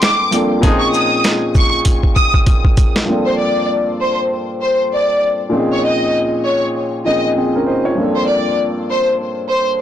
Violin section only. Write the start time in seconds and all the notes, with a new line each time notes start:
0.02 D6
0.79 C#6
0.93 D#6
1.57 C#6
2.16 D#6
3.25 C5
3.40 D5
4.02 C5
4.61 C5
4.93 D5
5.72 C#5
5.85 D#5
6.45 C#5
7.06 D#5
8.16 C5
8.29 D5
8.90 C5
9.49 C5